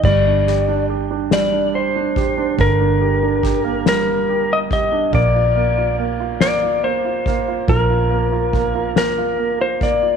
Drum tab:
CC |x-----|------|------|------|
RD |-xxxxx|xxxxxx|xxxxxx|xxxxxx|
SD |-o-o--|--oo--|---o--|---o--|
BD |o----o|o-o--o|o----o|o-o--o|